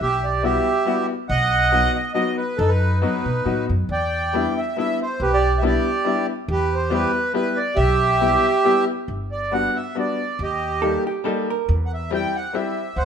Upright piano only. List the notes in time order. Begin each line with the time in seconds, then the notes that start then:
0.43 G3 B3 E4 F#4
0.85 G3 B3 E4 F#4
1.72 F#3 B3 D#4 F#4
2.14 F#3 B3 D#4 F#4
3.02 F#3 B3 D#4 F#4
3.45 F#3 B3 D#4 F#4
4.33 G3 B3 D4 E4
4.76 G3 B3 D4 E4
5.62 G3 B3 D4 E4
6.05 G3 B3 D4 E4
6.90 G3 B3 E4 G4
7.33 G3 B3 E4 G4
8.21 G3 B3 E4 G4
8.64 G3 B3 E4 G4
9.51 G3 B3 D4 F#4
9.95 G3 B3 D4 F#4
10.82 G3 A#3 D#4 G4
11.24 G3 A#3 D#4 G4
12.10 G3 C4 E4 G4
12.53 G3 C4 E4 G4